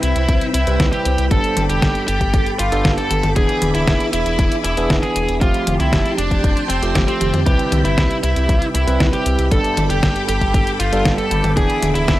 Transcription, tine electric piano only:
0, 0, Header, 1, 2, 480
1, 0, Start_track
1, 0, Key_signature, 0, "major"
1, 0, Tempo, 512821
1, 1227, Time_signature, 4, 2, 24, 8
1, 11415, End_track
2, 0, Start_track
2, 0, Title_t, "Tine electric piano"
2, 0, Program_c, 0, 4
2, 0, Note_on_c, 0, 48, 82
2, 0, Note_on_c, 0, 55, 77
2, 0, Note_on_c, 0, 60, 74
2, 0, Note_on_c, 0, 64, 73
2, 0, Note_on_c, 0, 71, 91
2, 598, Note_off_c, 0, 48, 0
2, 598, Note_off_c, 0, 55, 0
2, 598, Note_off_c, 0, 60, 0
2, 598, Note_off_c, 0, 64, 0
2, 598, Note_off_c, 0, 71, 0
2, 628, Note_on_c, 0, 48, 90
2, 628, Note_on_c, 0, 55, 80
2, 628, Note_on_c, 0, 60, 80
2, 628, Note_on_c, 0, 64, 80
2, 628, Note_on_c, 0, 71, 93
2, 1199, Note_off_c, 0, 48, 0
2, 1199, Note_off_c, 0, 55, 0
2, 1199, Note_off_c, 0, 60, 0
2, 1199, Note_off_c, 0, 64, 0
2, 1199, Note_off_c, 0, 71, 0
2, 1227, Note_on_c, 0, 62, 74
2, 1228, Note_on_c, 0, 43, 83
2, 1228, Note_on_c, 0, 55, 77
2, 1228, Note_on_c, 0, 59, 76
2, 1228, Note_on_c, 0, 69, 92
2, 2519, Note_off_c, 0, 43, 0
2, 2519, Note_off_c, 0, 55, 0
2, 2519, Note_off_c, 0, 59, 0
2, 2519, Note_off_c, 0, 62, 0
2, 2519, Note_off_c, 0, 69, 0
2, 2547, Note_on_c, 0, 43, 84
2, 2547, Note_on_c, 0, 55, 84
2, 2547, Note_on_c, 0, 59, 82
2, 2547, Note_on_c, 0, 62, 77
2, 2547, Note_on_c, 0, 69, 101
2, 3118, Note_off_c, 0, 69, 0
2, 3119, Note_off_c, 0, 43, 0
2, 3119, Note_off_c, 0, 55, 0
2, 3119, Note_off_c, 0, 59, 0
2, 3119, Note_off_c, 0, 62, 0
2, 3147, Note_on_c, 0, 52, 84
2, 3147, Note_on_c, 0, 62, 72
2, 3148, Note_on_c, 0, 59, 78
2, 3148, Note_on_c, 0, 68, 93
2, 4439, Note_off_c, 0, 52, 0
2, 4439, Note_off_c, 0, 59, 0
2, 4439, Note_off_c, 0, 62, 0
2, 4439, Note_off_c, 0, 68, 0
2, 4467, Note_on_c, 0, 62, 80
2, 4468, Note_on_c, 0, 52, 90
2, 4468, Note_on_c, 0, 59, 84
2, 4468, Note_on_c, 0, 68, 102
2, 5039, Note_off_c, 0, 52, 0
2, 5039, Note_off_c, 0, 59, 0
2, 5039, Note_off_c, 0, 62, 0
2, 5039, Note_off_c, 0, 68, 0
2, 5067, Note_on_c, 0, 53, 87
2, 5067, Note_on_c, 0, 57, 73
2, 5067, Note_on_c, 0, 60, 77
2, 5067, Note_on_c, 0, 67, 90
2, 6358, Note_off_c, 0, 53, 0
2, 6358, Note_off_c, 0, 60, 0
2, 6358, Note_off_c, 0, 67, 0
2, 6359, Note_off_c, 0, 57, 0
2, 6387, Note_on_c, 0, 53, 92
2, 6387, Note_on_c, 0, 57, 86
2, 6387, Note_on_c, 0, 60, 80
2, 6387, Note_on_c, 0, 67, 102
2, 6958, Note_off_c, 0, 57, 0
2, 6958, Note_off_c, 0, 67, 0
2, 6959, Note_off_c, 0, 53, 0
2, 6959, Note_off_c, 0, 60, 0
2, 6987, Note_on_c, 0, 48, 84
2, 6987, Note_on_c, 0, 55, 77
2, 6987, Note_on_c, 0, 60, 77
2, 6987, Note_on_c, 0, 64, 80
2, 6987, Note_on_c, 0, 71, 88
2, 8278, Note_off_c, 0, 48, 0
2, 8278, Note_off_c, 0, 55, 0
2, 8278, Note_off_c, 0, 60, 0
2, 8278, Note_off_c, 0, 64, 0
2, 8278, Note_off_c, 0, 71, 0
2, 8306, Note_on_c, 0, 48, 89
2, 8306, Note_on_c, 0, 55, 82
2, 8306, Note_on_c, 0, 60, 84
2, 8306, Note_on_c, 0, 64, 81
2, 8306, Note_on_c, 0, 71, 98
2, 8878, Note_off_c, 0, 48, 0
2, 8878, Note_off_c, 0, 55, 0
2, 8878, Note_off_c, 0, 60, 0
2, 8878, Note_off_c, 0, 64, 0
2, 8878, Note_off_c, 0, 71, 0
2, 8906, Note_on_c, 0, 43, 84
2, 8906, Note_on_c, 0, 62, 77
2, 8906, Note_on_c, 0, 69, 91
2, 8907, Note_on_c, 0, 55, 77
2, 8907, Note_on_c, 0, 59, 77
2, 10198, Note_off_c, 0, 43, 0
2, 10198, Note_off_c, 0, 55, 0
2, 10198, Note_off_c, 0, 59, 0
2, 10198, Note_off_c, 0, 62, 0
2, 10198, Note_off_c, 0, 69, 0
2, 10227, Note_on_c, 0, 43, 91
2, 10227, Note_on_c, 0, 55, 87
2, 10227, Note_on_c, 0, 69, 96
2, 10228, Note_on_c, 0, 59, 80
2, 10228, Note_on_c, 0, 62, 83
2, 10799, Note_off_c, 0, 43, 0
2, 10799, Note_off_c, 0, 55, 0
2, 10799, Note_off_c, 0, 59, 0
2, 10799, Note_off_c, 0, 62, 0
2, 10799, Note_off_c, 0, 69, 0
2, 10827, Note_on_c, 0, 52, 88
2, 10827, Note_on_c, 0, 59, 78
2, 10827, Note_on_c, 0, 62, 79
2, 10827, Note_on_c, 0, 68, 90
2, 11415, Note_off_c, 0, 52, 0
2, 11415, Note_off_c, 0, 59, 0
2, 11415, Note_off_c, 0, 62, 0
2, 11415, Note_off_c, 0, 68, 0
2, 11415, End_track
0, 0, End_of_file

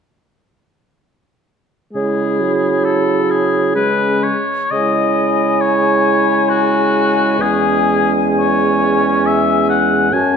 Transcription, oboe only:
0, 0, Header, 1, 2, 480
1, 0, Start_track
1, 0, Key_signature, 4, "minor"
1, 0, Tempo, 928793
1, 1005, Tempo, 900901
1, 1006, Time_signature, 3, 2, 24, 8
1, 1965, Tempo, 975610
1, 2445, Tempo, 890208
1, 3885, Tempo, 972447
1, 4365, Tempo, 881057
1, 5457, End_track
2, 0, Start_track
2, 0, Title_t, "Oboe"
2, 0, Program_c, 0, 68
2, 1003, Note_on_c, 0, 68, 25
2, 1483, Note_on_c, 0, 69, 32
2, 1491, Note_off_c, 0, 68, 0
2, 1729, Note_on_c, 0, 68, 34
2, 1737, Note_off_c, 0, 69, 0
2, 1964, Note_off_c, 0, 68, 0
2, 1967, Note_on_c, 0, 71, 51
2, 2203, Note_on_c, 0, 73, 44
2, 2210, Note_off_c, 0, 71, 0
2, 2440, Note_on_c, 0, 75, 40
2, 2447, Note_off_c, 0, 73, 0
2, 2925, Note_on_c, 0, 73, 42
2, 2933, Note_off_c, 0, 75, 0
2, 3400, Note_on_c, 0, 66, 42
2, 3408, Note_off_c, 0, 73, 0
2, 3898, Note_on_c, 0, 68, 34
2, 3905, Note_off_c, 0, 66, 0
2, 4292, Note_off_c, 0, 68, 0
2, 4377, Note_on_c, 0, 73, 46
2, 4854, Note_on_c, 0, 76, 45
2, 4862, Note_off_c, 0, 73, 0
2, 5085, Note_off_c, 0, 76, 0
2, 5088, Note_on_c, 0, 78, 47
2, 5325, Note_on_c, 0, 80, 41
2, 5333, Note_off_c, 0, 78, 0
2, 5457, Note_off_c, 0, 80, 0
2, 5457, End_track
0, 0, End_of_file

